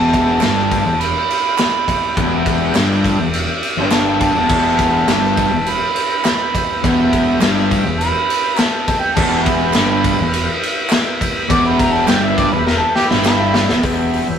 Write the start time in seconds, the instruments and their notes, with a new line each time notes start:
Already playing: fingered electric bass E1, distorted electric guitar E2, transistor combo organ E4 G4 D5, harmonica A5
0.13 kick, ride
0.41 fingered electric bass G1, distorted electric guitar G2, harmonica A5, snare, clap, ride
0.58 snare
0.71 kick, ride
0.86 fingered electric bass E1, distorted electric guitar E2
1.00 harmonica B5, ride
1.30 ride
1.58 snare, clap, ride
1.88 kick, ride
2.17 fingered electric bass E1, distorted electric guitar E2, kick, ride
2.46 kick, ride
2.74 fingered electric bass G1, distorted electric guitar G2, snare, clap, ride
2.91 snare
3.04 kick, ride
3.18 fingered electric bass E1, distorted electric guitar E2
3.33 ride
3.63 ride
3.77 fingered electric bass G1, distorted electric guitar G2
3.91 harmonica A5, snare, clap, ride
4.19 harmonica A5, kick, ride
4.34 fingered electric bass E1, distorted electric guitar E2
4.48 fingered electric bass E1, distorted electric guitar E2, transistor combo organ E4 G4 B4, kick, crash
4.79 kick, ride
5.07 fingered electric bass G1, distorted electric guitar G2, harmonica A5, snare, clap, ride
5.23 snare
5.37 kick, ride
5.51 fingered electric bass E1, distorted electric guitar E2
5.66 harmonica B5, ride
5.96 ride
6.25 snare, clap, ride
6.55 kick, ride
6.83 fingered electric bass E1, distorted electric guitar E2, kick, ride
7.13 kick, ride
7.41 fingered electric bass G1, distorted electric guitar G2, snare, clap, ride
7.58 snare
7.71 kick, ride
7.86 fingered electric bass E1, distorted electric guitar E2
7.98 harmonica B5, ride
8.30 ride
8.57 harmonica A5, snare, clap, ride
8.87 harmonica A5, kick, ride
8.99 harmonica G5
9.15 fingered electric bass E1, distorted electric guitar E2, transistor combo organ E4 G4 B4, harmonica A5, kick, crash
9.43 harmonica B5, kick, ride
9.73 fingered electric bass G1, distorted electric guitar G2, snare, clap, ride
10.04 kick, ride
10.19 fingered electric bass E1, distorted electric guitar E2
10.33 ride
10.63 ride
10.90 snare, clap, ride
11.21 kick, ride
11.49 fingered electric bass E1, distorted electric guitar E2, harmonica D6, kick, ride
11.65 harmonica B5
11.79 harmonica A#5, kick, ride
11.92 harmonica A5
12.07 fingered electric bass G1, distorted electric guitar G2, harmonica G5, snare, clap, ride
12.23 harmonica E5
12.38 harmonica D5, kick, ride
12.51 fingered electric bass E1, distorted electric guitar E2, harmonica B4
12.66 harmonica A#4, snare
12.79 harmonica A4
12.95 harmonica G4, snare
13.08 fingered electric bass G1, distorted electric guitar G2, harmonica E4, snare
13.25 harmonica E4, snare, clap
13.54 snare
13.69 fingered electric bass E1, distorted electric guitar E2, snare
13.83 fingered electric bass E1, distorted electric guitar E2, transistor combo organ E4 G4 B4, kick, open hi-hat
14.13 open hi-hat
14.27 fingered electric bass E1, distorted electric guitar E2